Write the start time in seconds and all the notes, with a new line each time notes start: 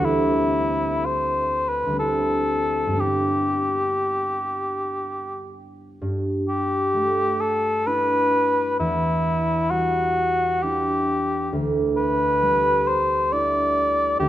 Already playing: D2 G3 C4
0.00 D4 E4
0.05 E4
1.06 C5
1.69 B4
1.86 D2 G3
1.93 C4 D4
1.99 E4 A4
2.87 G2 G3
2.93 B3 D4
2.99 E4 G4
6.02 G2
6.49 G4
6.94 A3
7.41 A4
7.87 D4 E4 B4
8.80 E2 E4
9.70 G3 F#4
10.63 D4 E4 G4
11.53 D2
11.97 B4
12.42 G3
12.88 C5
13.32 D4 E4 D5
14.20 D2 G4